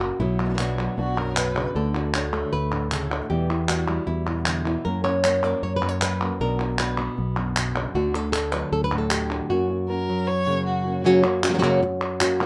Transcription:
Already playing: nylon-string guitar A#3 F#4
0.00 nylon-string guitar A#2 A#3 C#4 F#4, clap
0.20 fingered electric bass B1, nylon-string guitar B2 F#3 B3 E4, muted nylon-string guitar stroke
0.41 nylon-string guitar F#3 B3
0.45 nylon-string guitar F#3 B3 D4 F#4
0.50 nylon-string guitar B3 D4 F#4
0.54 nylon-string guitar F#3 B3 D4 F#4
0.58 nylon-string guitar B2 F#3 B3 D4 F#4, clap
0.78 nylon-string guitar F#3, clap
0.97 fingered electric bass B1, nylon-string guitar B2 F#3 B3 D4 F#4, violin F#4
1.16 nylon-string guitar F#2 B3 D4 F#4, violin A#4
1.36 nylon-string guitar B2, violin B4, muted nylon-string guitar stroke, clap
1.55 nylon-string guitar C#3 B3 D4 F#4, clap
1.74 fingered electric bass D2, nylon-string guitar D3 A3 D4 F#4 A4
1.94 nylon-string guitar A3 D4 F#4
2.14 nylon-string guitar D3 A3 D4 F#4 C#5, clap
2.33 nylon-string guitar A3
2.53 fingered electric bass D2, nylon-string guitar B4, muted nylon-string guitar stroke
2.71 nylon-string guitar A2 A3 D4 F#4
2.92 nylon-string guitar C#3 A4, clap
3.10 nylon-string guitar A3 D4 F#4
3.30 fingered electric bass E2, nylon-string guitar B2 E3 G3 B3 E4 G4
3.50 nylon-string guitar G3 B3 E4
3.68 nylon-string guitar E3 G3 B3 E4 F#4, clap
3.87 nylon-string guitar G3 E4, clap
4.07 fingered electric bass E2, nylon-string guitar E4, muted nylon-string guitar stroke
4.27 nylon-string guitar B2 G3 B3 E4
4.46 nylon-string guitar D3, clap
4.65 nylon-string guitar E3 G3 B3 E4, clap
4.85 fingered electric bass F#2, nylon-string guitar F#2 C#3 F#3 A#3 C#4 F#4 A#4
5.04 nylon-string guitar A#3 C#4 F#4 C#5
5.23 nylon-string guitar F#3 A#3 F#4 C#5, clap
5.43 nylon-string guitar A#3 C#4 F#4 D5
5.62 fingered electric bass F#2, nylon-string guitar C#5, muted nylon-string guitar stroke
5.76 nylon-string guitar B4
5.81 nylon-string guitar F#2 A#3 C#4 F#4
5.89 nylon-string guitar C#5
6.01 nylon-string guitar B4, clap
6.21 nylon-string guitar A#3 C#4 F#4, clap
6.39 fingered electric bass B1, nylon-string guitar B2 F#3 B3 D4 F#4 A#4
6.59 nylon-string guitar B3 D4 F#4
6.78 nylon-string guitar F#3 B3 D4 F#4 B4, clap
6.98 nylon-string guitar B3 D4 F#4
7.17 fingered electric bass B1, muted nylon-string guitar stroke
7.36 nylon-string guitar F#2 B3 D4 F#4
7.56 nylon-string guitar B2, clap
7.75 nylon-string guitar C#3 B3 D4 F#4, clap
7.94 fingered electric bass D2, nylon-string guitar D3 A3 D4 F#4
8.14 nylon-string guitar A3 D4 F#4 A4
8.32 nylon-string guitar D3 A3 D4 F#4 A4, clap
8.52 nylon-string guitar F#3 B4, clap
8.72 fingered electric bass D2, nylon-string guitar A4, muted nylon-string guitar stroke
8.84 nylon-string guitar B4
8.91 nylon-string guitar A2 A3 D4 F#4
8.98 nylon-string guitar A4
9.10 nylon-string guitar G4, clap
9.30 nylon-string guitar A3 D4 F#4, clap
9.50 nylon-string guitar F#2 C#3 F#3 A#3 C#4 F#4
9.69 nylon-string guitar A#3 C#4 F#4
9.88 nylon-string guitar F#3 A#3 C#4 F#4, violin A#4
10.09 nylon-string guitar F#3
10.27 violin C#5, muted nylon-string guitar stroke
10.46 nylon-string guitar C#3 A#3 C#4 F#4
10.66 violin F#4
10.85 nylon-string guitar A#3 C#4 F#4
11.04 nylon-string guitar C#3 F#3 A#3 C#4 F#4
11.23 nylon-string guitar A#3 C#4 F#4
11.43 nylon-string guitar A#3 C#4 F#4, clap
11.50 nylon-string guitar F#3 A#3 C#4 F#4
11.54 nylon-string guitar F#3 A#3 C#4 F#4
11.58 nylon-string guitar F#3 A#3 C#4 F#4
11.63 nylon-string guitar C#3 F#3 A#3 C#4 F#4
11.82 muted nylon-string guitar stroke
12.21 nylon-string guitar A#3 C#4 F#4, clap
12.40 nylon-string guitar F#3 A#3 C#4 F#4

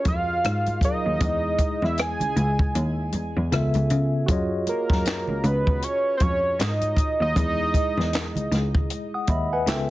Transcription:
Already playing: tine electric piano F4 F#4 G#4 A#4 D#5
0.05 cello F2, analog synth lead F5, kick, closed hi-hat, muted conga, high conga
0.44 cello G#2, cross-stick, closed hi-hat, muted conga, high conga
0.66 closed hi-hat, high conga
0.81 tine electric piano F#3 F4 G#4 A#4, analog synth lead D#5, kick, closed hi-hat, muted conga
0.85 tine electric piano F5
1.06 cello D#2
1.19 cello E2, tine electric piano G#3 E4, kick, closed hi-hat, muted conga, low conga
1.24 tine electric piano G#4 D#5
1.59 kick, closed hi-hat, muted conga
1.82 cello E2, analog synth lead E5, cross-stick, high conga
1.98 analog synth lead G#5, cross-stick, closed hi-hat
2.20 cello C#2, closed hi-hat, low conga
2.37 cello C#2, closed hi-hat
2.59 kick, low conga
2.75 cello D#2, closed hi-hat
3.12 cello E2, closed hi-hat, muted conga, high conga
3.37 cello E2
3.51 cello C#2, tine electric piano C#3 B3 F4 A4 E5, cross-stick, closed hi-hat, muted conga, high conga
3.74 cello C#2, closed hi-hat, high conga
3.90 cello C#3, closed hi-hat, muted conga
4.26 cello F#2, tine electric piano F4 F#4 G#4, kick, closed hi-hat, muted conga, low conga
4.31 tine electric piano C#5 D#5
4.67 analog synth lead A#4, closed hi-hat, muted conga
4.90 cello F#2, kick, snare, high conga
5.05 snare, clap, closed hi-hat, muted conga
5.27 cello C#2, low conga
5.44 cello C#2, analog synth lead B4, closed hi-hat, muted conga
5.67 kick, low conga
5.82 analog synth lead C#5, closed hi-hat
6.17 cello F2, analog synth lead C5, kick, closed hi-hat, high conga
6.22 analog synth lead C#5
6.60 cello G#2, analog synth lead D#5, snare, clap, closed hi-hat, muted conga, high conga
6.81 closed hi-hat, high conga
6.97 kick, closed hi-hat, muted conga
7.21 cello D#2, analog synth lead D#5
7.35 cello E2, tine electric piano G#3 E4, kick, closed hi-hat, low conga
7.39 tine electric piano G#4 D#5
7.74 kick, closed hi-hat
7.97 cello E2, snare, high conga
8.13 snare, clap, closed hi-hat, muted conga
8.35 cello C#2, closed hi-hat, low conga
8.52 cello C#2, snare, closed hi-hat
8.75 kick, low conga
8.90 closed hi-hat, muted conga
9.14 tine electric piano F#5 D#6
9.27 cello D#2, tine electric piano D#5 E5 B5, kick, closed hi-hat, muted conga, high conga
9.53 tine electric piano B4 F#5 G#5
9.67 cello C#2, tine electric piano C#3 B3 F4 A4 E5, snare, clap, closed hi-hat, muted conga, high conga

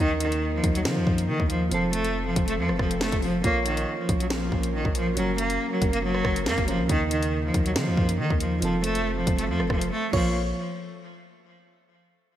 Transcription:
Already playing: synth keys D#3, analog synth pad A#3 A#4
0.00 808-style bass D#2, cello D#3, analog synth pad D#3 D#4, synth keys A#3 D#4
0.20 cello D#3, closed hi-hat
0.32 closed hi-hat
0.54 cello F3
0.64 808-style bass D#2, kick, closed hi-hat
0.75 cello F#3, closed hi-hat
0.85 808-style bass D#3, cello F3, snare
0.97 808-style bass D#2
1.07 808-style bass F#2, kick
1.18 closed hi-hat
1.28 808-style bass D#3, cello D#3
1.40 808-style bass D#2, kick
1.50 cello F3, closed hi-hat
1.69 808-style bass F1, synth keys F3 C4, cello F3, analog synth pad F3 A3 C4 A4, closed hi-hat
1.74 synth keys A4
1.93 cello A3, closed hi-hat
2.05 closed hi-hat
2.26 cello F3
2.36 808-style bass F1, kick, closed hi-hat
2.47 cello A3, closed hi-hat
2.58 808-style bass F2, cello F3
2.69 808-style bass F1, cross-stick
2.79 808-style bass F1, cello F3, kick, cross-stick
2.91 closed hi-hat
3.01 cello A3, snare
3.12 808-style bass F1, kick, closed hi-hat
3.22 cello F3, open hi-hat
3.42 808-style bass A#1, synth keys A#3 F4, cello A#3, analog synth pad A#3 C#4 A#4, kick, closed hi-hat
3.47 synth keys C#5
3.66 cello D#3, closed hi-hat
3.77 closed hi-hat
3.99 cello F3
4.09 808-style bass A#1, kick, closed hi-hat
4.20 cello F#3, closed hi-hat
4.30 cello F3, snare
4.52 808-style bass A#1, kick
4.63 closed hi-hat
4.74 cello D#3
4.85 808-style bass A#1, kick
4.95 cello F3, closed hi-hat
5.07 808-style bass A1
5.15 808-style bass F#1, analog synth pad C#3, synth keys F#3 C#4, cello F#3, closed hi-hat
5.20 synth keys A#4
5.38 cello A#3, closed hi-hat
5.50 closed hi-hat
5.71 cello F#3
5.82 808-style bass F#1, kick, closed hi-hat
5.93 cello A#3, closed hi-hat
6.03 cello F#3
6.15 cross-stick
6.25 808-style bass F#1, kick, cross-stick
6.36 closed hi-hat
6.46 808-style bass F#2, cello A#3, snare
6.58 808-style bass F#1, kick, closed hi-hat
6.67 cello F3, synth keys F#3 C#4 A#4, closed hi-hat
6.79 808-style bass C#2
6.87 808-style bass D#2, synth keys D#3 A#3, cello D#3, analog synth pad A#3 D#4, kick, closed hi-hat
6.92 synth keys D#4
7.11 cello D#3, closed hi-hat
7.23 closed hi-hat
7.44 cello F3
7.54 808-style bass D#2, kick, closed hi-hat
7.66 cello F#3, closed hi-hat
7.76 808-style bass D#3, cello F3, snare
7.87 808-style bass D#2
7.97 808-style bass F#2, kick
8.09 closed hi-hat
8.19 808-style bass D#3, cello D#3
8.30 808-style bass D#2, kick
8.40 cello F3, closed hi-hat
8.60 808-style bass F1, synth keys F3 C4, analog synth pad F3 A3 C4 A4, cello F3, closed hi-hat
8.65 synth keys A4
8.84 cello A3, closed hi-hat
8.95 closed hi-hat
9.17 cello F3
9.27 808-style bass F1, kick, closed hi-hat
9.38 cello A3, closed hi-hat
9.48 808-style bass F2, cello F3
9.60 808-style bass F1, cross-stick
9.70 808-style bass F1, cello F3, kick, cross-stick
9.81 closed hi-hat
9.92 cello A3
10.13 808-style bass A#1, cello F3, synth keys A#3 F4 C#5, kick, crash

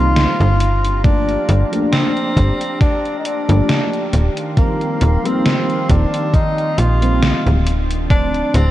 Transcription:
Already playing: fm bass C2, analog synth pad D#3 C5 F5 A#5, fm electric piano D#3 G3 A#3 C4 D#4, tenor saxophone F4
0.16 snare, closed hi-hat
0.40 fm bass G1, closed hi-hat
0.60 analog synth pad D4 G4 A#5, closed hi-hat
0.84 closed hi-hat
1.04 fm electric piano F3 A3 A#3 D4, tenor saxophone D4, kick, closed hi-hat
1.29 closed hi-hat
1.49 fm bass G1, closed hi-hat
1.71 fm electric piano F3 A3 A#3 D4, closed hi-hat
1.92 tenor saxophone C4, snare, closed hi-hat
2.17 closed hi-hat
2.37 fm bass G1, kick, closed hi-hat
2.61 closed hi-hat
2.81 tenor saxophone D4, kick, snare, closed hi-hat
3.05 closed hi-hat
3.19 tenor saxophone D#4
3.25 tenor saxophone D4, closed hi-hat
3.48 fm bass G1, fm electric piano F3 A3 A#3 D4, closed hi-hat
3.69 snare, closed hi-hat
3.93 closed hi-hat
4.13 fm bass D#1, analog synth pad D#3 F5 C6, closed hi-hat
4.37 closed hi-hat
4.56 fm electric piano F3 G3 A#3 C4, tenor saxophone A#3, kick, closed hi-hat
4.81 closed hi-hat
5.01 fm bass D#1, closed hi-hat
5.24 fm electric piano F3 G3 A#3 C4, tenor saxophone C4, closed hi-hat
5.46 snare, closed hi-hat
5.70 closed hi-hat
5.90 fm bass D#1, tenor saxophone D4, kick, closed hi-hat
6.14 closed hi-hat
6.34 tenor saxophone D#4, kick, closed hi-hat
6.58 closed hi-hat
6.78 fm bass A#1, tenor saxophone F4, closed hi-hat
7.01 fm electric piano F3 G3 A#3 C4, closed hi-hat
7.22 snare, closed hi-hat
7.46 fm bass D1, closed hi-hat
7.67 analog synth pad D4 A5, closed hi-hat
7.91 closed hi-hat
8.10 fm electric piano D3 F3 A3 C4, tenor saxophone D4, kick, closed hi-hat
8.34 closed hi-hat
8.54 fm bass D1, tenor saxophone C4, closed hi-hat

